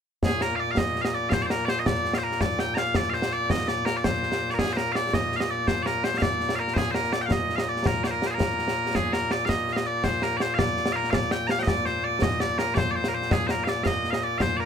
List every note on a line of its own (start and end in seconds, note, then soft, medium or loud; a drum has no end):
0.23 14.65 A#2 medium
0.23 0.42 G#4 medium
0.23 concert bass drum medium
0.23 snare loud
0.41 0.56 A#4 medium
0.41 snare medium
0.56 0.71 D5 medium
0.56 0.60 F5 medium
0.71 0.78 F5 medium
0.77 1.02 D#5 loud
0.77 concert bass drum medium
0.77 snare loud
0.96 snare soft
1.02 1.14 D#5 medium
1.02 1.05 F5 medium
1.02 snare medium
1.14 1.29 D5 medium
1.29 1.42 C5 loud
1.29 1.33 F5 loud
1.29 concert bass drum medium
1.29 snare medium
1.42 1.46 D5 medium
1.46 1.51 C5 medium
1.50 1.65 A#4 medium
1.50 snare medium
1.65 1.79 C5 loud
1.65 1.69 D5 loud
1.65 snare medium
1.79 1.86 D#5 medium
1.86 2.14 D5 loud
1.86 concert bass drum medium
1.86 snare medium
2.05 snare soft
2.13 2.18 F5 medium
2.13 snare medium
2.18 2.24 C5 medium
2.24 2.41 A#4 medium
2.32 snare soft
2.41 2.59 D5 loud
2.41 concert bass drum medium
2.41 snare medium
2.59 2.74 G5 loud
2.59 snare medium
2.74 2.96 F5 loud
2.74 2.78 A#5 loud
2.74 snare medium
2.95 3.10 D5 loud
2.95 concert bass drum medium
2.95 snare medium
3.10 3.14 F5 medium
3.10 snare soft
3.14 3.33 C5 medium
3.22 snare medium
3.33 3.50 D5 medium
3.50 3.68 D#5 loud
3.50 concert bass drum medium
3.50 snare medium
3.68 3.86 D5 medium
3.68 snare medium
3.86 3.97 A#4 medium
3.86 snare medium
3.97 4.04 D5 medium
4.04 4.50 C5 medium
4.04 concert bass drum medium
4.04 snare medium
4.23 snare soft
4.32 snare medium
4.50 4.54 D5 medium
4.50 snare soft
4.54 4.59 A#4 medium
4.59 4.73 G#4 medium
4.59 concert bass drum soft
4.59 snare medium
4.73 4.77 C5 medium
4.77 4.92 A#4 medium
4.77 snare medium
4.92 5.14 D5 medium
4.92 4.95 F5 medium
4.92 snare medium
5.13 5.36 D#5 loud
5.13 concert bass drum soft
5.13 snare medium
5.32 snare soft
5.36 5.40 F5 medium
5.40 5.50 D#5 medium
5.40 snare medium
5.50 5.67 D5 medium
5.67 5.82 C5 medium
5.67 concert bass drum medium
5.67 snare medium
5.82 6.04 A#4 medium
5.82 5.86 D5 medium
5.82 snare medium
6.04 6.18 C5 medium
6.04 snare medium
6.18 6.22 F5 loud
6.22 6.55 D5 loud
6.22 concert bass drum medium
6.22 snare medium
6.40 snare soft
6.49 snare medium
6.55 6.59 F5 medium
6.59 6.74 A#4 medium
6.68 snare soft
6.74 6.91 G#4 medium
6.74 6.77 C5 medium
6.74 concert bass drum medium
6.74 snare medium
6.91 7.13 A#4 medium
6.91 6.95 C5 medium
6.91 snare medium
7.04 snare soft
7.13 7.21 D5 medium
7.13 snare medium
7.21 7.26 G5 medium
7.26 7.32 F5 medium
7.31 7.56 D#5 loud
7.31 concert bass drum medium
7.31 snare medium
7.49 snare soft
7.56 7.68 D#5 medium
7.56 7.59 F5 medium
7.56 snare medium
7.68 7.87 D5 medium
7.76 snare soft
7.86 8.04 A#4 medium
7.86 concert bass drum medium
7.86 snare medium
8.04 8.11 C5 medium
8.04 8.07 D5 medium
8.04 snare medium
8.11 8.27 A#4 medium
8.22 snare medium
8.27 8.34 G#4 medium
8.27 8.31 C5 medium
8.34 8.95 A#4 medium
8.40 concert bass drum medium
8.40 snare loud
8.59 snare soft
8.68 snare medium
8.86 snare soft
8.95 9.13 G#4 medium
8.95 concert bass drum medium
8.95 snare medium
9.13 9.32 A#4 medium
9.13 snare medium
9.31 9.45 D5 medium
9.31 snare medium
9.45 9.49 F5 loud
9.49 9.73 D#5 loud
9.49 concert bass drum soft
9.49 snare medium
9.68 snare soft
9.73 9.86 D#5 medium
9.73 9.77 F5 medium
9.73 snare medium
9.86 10.04 D5 medium
10.04 10.23 C5 medium
10.04 concert bass drum medium
10.04 snare medium
10.22 10.37 A#4 medium
10.22 snare medium
10.37 10.41 D5 medium
10.37 snare medium
10.41 10.54 C5 medium
10.54 10.59 F5 loud
10.59 10.92 D5 loud
10.59 concert bass drum medium
10.59 snare medium
10.77 snare soft
10.86 snare medium
10.92 11.11 A#4 loud
10.92 10.96 F5 loud
11.04 snare soft
11.11 11.31 D5 medium
11.11 11.14 F5 medium
11.11 concert bass drum medium
11.11 snare loud
11.31 11.47 G5 loud
11.31 snare medium
11.47 11.59 F5 loud
11.47 11.50 A#5 loud
11.47 snare medium
11.59 11.68 D#5 medium
11.59 11.62 G5 medium
11.67 11.86 D5 loud
11.67 concert bass drum medium
11.67 snare loud
11.86 12.04 C5 medium
11.86 snare soft
12.04 12.23 D5 medium
12.22 12.40 D#5 loud
12.22 concert bass drum medium
12.22 snare loud
12.40 12.58 D5 loud
12.40 snare medium
12.58 12.74 A#4 medium
12.58 snare medium
12.74 12.91 C5 loud
12.74 12.78 D5 loud
12.74 concert bass drum medium
12.74 snare medium
12.91 12.96 D5 medium
12.96 13.08 C5 medium
13.04 snare medium
13.08 13.14 A#4 medium
13.14 13.32 C5 medium
13.22 snare soft
13.31 13.47 G#4 medium
13.31 concert bass drum medium
13.31 snare loud
13.47 13.64 A#4 medium
13.47 13.51 C5 medium
13.47 snare medium
13.64 13.68 F5 medium
13.64 snare medium
13.68 13.84 D5 medium
13.84 14.11 D#5 loud
13.84 13.87 F5 loud
13.84 concert bass drum medium
13.84 snare medium
14.04 snare soft
14.11 14.23 D#5 medium
14.11 14.14 F5 medium
14.11 snare medium
14.23 14.38 D5 medium
14.38 14.56 C5 loud
14.38 14.41 F5 loud
14.38 concert bass drum medium
14.38 snare medium
14.56 14.65 A#4 medium
14.56 14.60 D5 medium